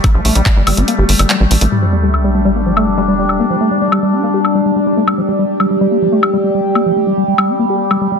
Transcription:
Already playing: synth drone G3 A3
0.04 acid bass A#3, kick, closed hi-hat, high woodblock
0.14 analog synth bass A#1, acid bass F3
0.25 analog synth bass A#1, acid bass A3, open hi-hat
0.35 analog synth bass A#1, acid bass G3, closed hi-hat
0.46 acid bass G3, kick, clap, closed hi-hat
0.56 analog synth bass G1, acid bass G3
0.67 analog synth bass G1, acid bass G3, open hi-hat, high woodblock
0.77 analog synth bass G1, acid bass D4, closed hi-hat
0.88 acid bass A#3, closed hi-hat
0.98 analog synth bass G1, acid bass G4
1.09 analog synth bass G1, open hi-hat
1.19 analog synth bass G1, acid bass G3, closed hi-hat, high woodblock
1.30 acid bass G3, clap, closed hi-hat
1.40 analog synth bass A1, acid bass G3
1.51 analog synth bass A1, acid bass G3, open hi-hat
1.61 analog synth bass A1, acid bass A3, closed hi-hat
1.72 acid bass G3, synth drone G3 D4, sub drop
1.82 acid bass F3
1.93 acid bass G3
2.03 acid bass G3
2.14 high woodblock
2.24 acid bass G3
2.35 acid bass G3
2.45 acid bass G3
2.56 acid bass A#3
2.66 acid bass F3
2.77 acid bass A3, high woodblock
2.87 acid bass G3
2.98 acid bass G3
3.08 acid bass G3
3.19 acid bass G3
3.29 high woodblock
3.40 acid bass A#3
3.50 acid bass F3
3.61 acid bass A3
3.71 acid bass G3
3.82 acid bass G3
3.92 acid bass G3, high woodblock
4.03 acid bass G3
4.13 acid bass D4
4.24 acid bass A#3
4.34 acid bass G4
4.45 high woodblock
4.55 acid bass G3
4.65 acid bass G3
4.76 acid bass G3
4.86 acid bass G3
4.97 acid bass A3
5.07 acid bass G3, synth drone G4, high woodblock
5.18 acid bass F3
5.28 acid bass G3
5.39 acid bass G3
5.60 acid bass G3, high woodblock
5.70 acid bass G3
5.81 acid bass G3
5.91 acid bass A#3
6.02 acid bass F3
6.12 acid bass A3
6.23 acid bass G3, high woodblock
6.33 acid bass G3
6.44 acid bass G3
6.54 acid bass G3
6.75 acid bass A#3, high woodblock
6.86 acid bass F3
6.96 acid bass A3
7.07 acid bass G3
7.17 acid bass G3
7.28 acid bass G3
7.38 acid bass G3, high woodblock
7.49 acid bass D4
7.59 acid bass A#3
7.70 acid bass G4
7.91 acid bass G3, high woodblock
8.01 acid bass G3
8.12 acid bass G3

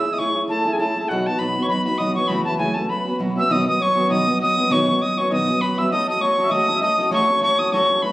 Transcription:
Already playing: accordion E5, tin whistle E6
0.04 steel-string acoustic guitar C#4 E4 G#4
0.12 accordion D#5, tin whistle D#6
0.18 steel-string acoustic guitar A3 C#4 E4 G#4, accordion C#5, tin whistle C#6
0.34 steel-string acoustic guitar C#4 E4 G#4
0.48 steel-string acoustic guitar A3 C#4 E4 G#4, accordion A4, tin whistle A5
0.65 steel-string acoustic guitar C#4 E4 G#4
0.72 accordion G#4, tin whistle G#5
0.79 steel-string acoustic guitar A3 C#4 E4 G#4, accordion A4, tin whistle A5
0.89 accordion A4
0.96 steel-string acoustic guitar C#4 E4 G#4, accordion A4
1.09 steel-string acoustic guitar B2 F#3 B3 D#4 F#4, accordion F#4, tin whistle F#5
1.19 accordion F#4
1.26 steel-string acoustic guitar B3 D#4 F#4, accordion F#4, tin whistle A5
1.38 steel-string acoustic guitar B2 F#3 B3 D#4 F#4, accordion B4, tin whistle B5
1.55 steel-string acoustic guitar B3 D#4 F#4
1.63 accordion C#5, tin whistle C#6
1.69 steel-string acoustic guitar F#3 B3 D#4 F#4, accordion B4, tin whistle B5
1.85 steel-string acoustic guitar B3 D#4 F#4, accordion B4, tin whistle B5
1.98 steel-string acoustic guitar B2 F#3 B3 D#4 F#4, accordion D#5, tin whistle D#6
2.15 steel-string acoustic guitar B3 D#4 F#4, accordion C#5, tin whistle C#6
2.28 steel-string acoustic guitar F#2 C#3 E3 A3 C#4 F#4, accordion B4, tin whistle B5
2.45 steel-string acoustic guitar E3 A3 C#4 F#4, tin whistle A5
2.58 steel-string acoustic guitar F#2 C#3 E3 A3 C#4 F#4, accordion G#4, tin whistle G#5
2.74 steel-string acoustic guitar E3 A3 C#4 F#4, accordion A4, tin whistle A5
2.88 steel-string acoustic guitar F#3 B3 C#4 F#4, accordion B4, tin whistle B5
3.00 accordion B4
3.05 steel-string acoustic guitar B3 C#4 F#4
3.10 accordion B4
3.19 steel-string acoustic guitar B2 F#3 B3 C#4 F#4
3.36 steel-string acoustic guitar B3 C#4 F#4, accordion E5, tin whistle E6
3.49 steel-string acoustic guitar B2 D#3 F#3 B3 C#4 F#4, accordion D#5, tin whistle D#6
3.66 steel-string acoustic guitar F#3 B3 C#4 F#4, accordion D#5, tin whistle D#6
3.79 steel-string acoustic guitar F#3 B3 C#4 F#4, accordion C#5, tin whistle C#6
3.95 steel-string acoustic guitar F#3 B3 C#4 F#4
4.09 steel-string acoustic guitar B2 D#3 F#3 B3 C#4 F#4, accordion D#5, tin whistle D#6
4.27 steel-string acoustic guitar F#3 B3 C#4
4.39 steel-string acoustic guitar F#3 B3 C#4 F#4, accordion D#5, tin whistle D#6
4.57 steel-string acoustic guitar F#3 B3 C#4 F#4
4.70 steel-string acoustic guitar B2 D#3 F#3 B3 C#4 F#4, accordion C#5, tin whistle C#6
4.87 steel-string acoustic guitar F#3 B3 C#4 F#4, accordion C#5
5.01 steel-string acoustic guitar F#3 B3 C#4 F#4, accordion D#5, tin whistle D#6
5.17 steel-string acoustic guitar F#3 B3 C#4 F#4, accordion C#5, tin whistle C#6
5.30 steel-string acoustic guitar B2 D#3 F#3 B3 C#4 F#4, accordion D#5, tin whistle D#6
5.48 steel-string acoustic guitar F#3 B3 C#4 F#4
5.61 steel-string acoustic guitar F#3 B3 C#4 F#4, accordion B4, tin whistle B5
5.78 steel-string acoustic guitar F#3 B3 C#4 F#4, accordion E5, tin whistle E6
5.90 steel-string acoustic guitar A3 C#4 F#4 A4, accordion D#5, tin whistle D#6
6.07 steel-string acoustic guitar C#4 F#4 A4, accordion D#5, tin whistle D#6
6.20 steel-string acoustic guitar A3 C#4 F#4 A4, accordion C#5, tin whistle C#6
6.38 steel-string acoustic guitar C#4 F#4 A4
6.43 accordion E5
6.49 steel-string acoustic guitar A3 C#4 F#4 A4, accordion D#5, tin whistle D#6
6.68 steel-string acoustic guitar C#4 F#4 A4
6.74 accordion E5
6.81 steel-string acoustic guitar A3 C#4 F#4 A4, accordion D#5, tin whistle D#6
6.98 steel-string acoustic guitar C#4 F#4 A4
7.11 steel-string acoustic guitar A3 C#4 F#4 A4, accordion C#5, tin whistle C#6
7.22 accordion C#5
7.28 steel-string acoustic guitar C#4 F#4 A4
7.33 accordion C#5
7.41 steel-string acoustic guitar A3 C#4 F#4 A4, accordion C#5, tin whistle C#6
7.58 steel-string acoustic guitar C#4 F#4 A4, tin whistle D#6
7.72 steel-string acoustic guitar A3 C#4 F#4 A4, accordion C#5, tin whistle C#6
7.89 steel-string acoustic guitar C#4 F#4 A4
8.02 steel-string acoustic guitar A3 C#4 F#4 A4, accordion B4, tin whistle B5

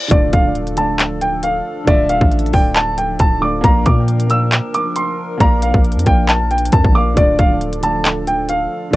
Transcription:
Already playing: reverse cymbal
0.08 808-style bass D1, grand piano D3 A3 F4 D5, analog synth pad F3 D4 A4, kick, closed hi-hat, impact
0.13 grand piano D5
0.33 808-style bass D1, grand piano F5, kick, closed hi-hat
0.42 grand piano D3 A3 F4
0.48 grand piano D5
0.55 closed hi-hat
0.67 closed hi-hat
0.75 grand piano D3 A3 F4 A5, closed hi-hat
0.80 grand piano D5
0.99 clap, closed hi-hat
1.21 grand piano G5, closed hi-hat
1.43 grand piano F5, closed hi-hat
1.85 808-style bass D1, grand piano D3 A3 F4 D5, kick, closed hi-hat
1.90 grand piano E5
2.09 grand piano F5, closed hi-hat
2.18 808-style bass A1, grand piano D3 A3 F4, kick
2.23 grand piano D5
2.32 closed hi-hat
2.39 closed hi-hat
2.46 closed hi-hat
2.51 808-style bass D1, grand piano D3 A3 F4 G5, kick, open hi-hat
2.56 grand piano D5
2.76 grand piano A5, clap, closed hi-hat
2.98 grand piano G5, closed hi-hat
3.19 808-style bass D1, grand piano A5, kick, closed hi-hat
3.39 grand piano D3 A3 F4 D6
3.44 grand piano D5
3.61 808-style bass A#1, grand piano A#3 A#4 D5 A#5, analog synth pad D4 A#4, kick, closed hi-hat
3.66 grand piano F5
3.86 808-style bass A#2, grand piano D6, kick, closed hi-hat
3.94 grand piano A#3 A#4 D5
4.00 grand piano G5
4.08 closed hi-hat
4.20 closed hi-hat
4.27 grand piano A#3 A#4 D5 E6, closed hi-hat
4.32 grand piano F5
4.52 clap, closed hi-hat
4.74 grand piano D6, closed hi-hat
4.96 grand piano C6, closed hi-hat
5.38 808-style bass A#1, grand piano A#3 A#4 D5 A#5, kick, closed hi-hat
5.43 grand piano F5
5.62 grand piano F5, closed hi-hat
5.71 808-style bass A#1, grand piano A#3 A#4 D5, kick
5.77 grand piano F5
5.85 closed hi-hat
5.92 closed hi-hat
5.96 808-style bass F2, closed hi-hat
6.04 808-style bass A#1, grand piano A#3 A#4 D5 G5, kick, closed hi-hat
6.09 grand piano F5
6.29 grand piano A5, clap, closed hi-hat
6.51 grand piano G5, closed hi-hat
6.58 closed hi-hat
6.65 closed hi-hat
6.72 808-style bass F2, grand piano A5, kick, closed hi-hat
6.84 808-style bass A#1, kick
6.92 grand piano A#3 A#4 D5 D6
6.98 grand piano F5
7.14 808-style bass D1, grand piano D3 A3 F4 D5, analog synth pad A4, kick, closed hi-hat
7.19 grand piano D5
7.39 808-style bass D1, grand piano F5, kick, closed hi-hat
7.48 grand piano D3 A3 F4
7.53 grand piano D5
7.61 closed hi-hat
7.73 closed hi-hat
7.81 grand piano D3 A3 F4 A5, closed hi-hat
7.86 grand piano D5
8.05 clap, closed hi-hat
8.27 grand piano G5, closed hi-hat
8.49 grand piano F5, closed hi-hat
8.91 grand piano D3 A3

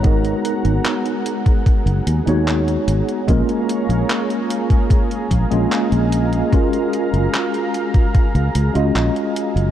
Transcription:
Already playing: fingered electric bass G#1, tine electric piano G#3 B3 D#4 F#4 C#5, analog synth pad B3 G#4 F#5 A#5
0.03 tine electric piano G#3 B3 D#4 F#4 A#4, kick, closed hi-hat
0.25 closed hi-hat
0.45 closed hi-hat
0.65 fingered electric bass G#1, closed hi-hat
0.85 clap, closed hi-hat
1.06 closed hi-hat
1.26 closed hi-hat
1.46 kick, closed hi-hat
1.66 kick, closed hi-hat
1.86 fingered electric bass F#1, closed hi-hat
2.07 fingered electric bass D#2, closed hi-hat
2.26 fingered electric bass D#2, tine electric piano G#3 B3 D#4 F#4 C#5, closed hi-hat
2.48 clap, closed hi-hat
2.68 closed hi-hat
2.88 fingered electric bass G#1, closed hi-hat
3.09 closed hi-hat
3.27 fingered electric bass A#1, tine electric piano G#3 A#3 C#4 F4 A#4, analog synth pad C#5 F5 A#5, kick, closed hi-hat
3.49 closed hi-hat
3.69 closed hi-hat
3.89 fingered electric bass A#1, closed hi-hat
4.10 clap, closed hi-hat
4.30 closed hi-hat
4.50 closed hi-hat
4.70 kick, closed hi-hat
4.90 kick, closed hi-hat
5.11 closed hi-hat
5.31 fingered electric bass A#1, kick, closed hi-hat
5.50 fingered electric bass A#1, tine electric piano G#3 A#3 C#4 F4 D#5, closed hi-hat
5.72 clap, closed hi-hat
5.92 fingered electric bass A#1, closed hi-hat
6.12 closed hi-hat
6.33 closed hi-hat
6.52 tine electric piano G#3 C#4 F4 F#4 A#4, kick, closed hi-hat
6.73 closed hi-hat
6.93 closed hi-hat
7.13 fingered electric bass F#1, closed hi-hat
7.34 clap, closed hi-hat
7.54 closed hi-hat
7.74 closed hi-hat
7.94 kick, closed hi-hat
8.15 kick, closed hi-hat
8.35 fingered electric bass C#2, closed hi-hat
8.55 fingered electric bass C#2, closed hi-hat
8.74 fingered electric bass C#2, tine electric piano G#3 C#4 F4 F#4 D#5, closed hi-hat
8.95 fingered electric bass A#1, clap, closed hi-hat
9.16 closed hi-hat
9.36 closed hi-hat
9.56 fingered electric bass F#1, closed hi-hat

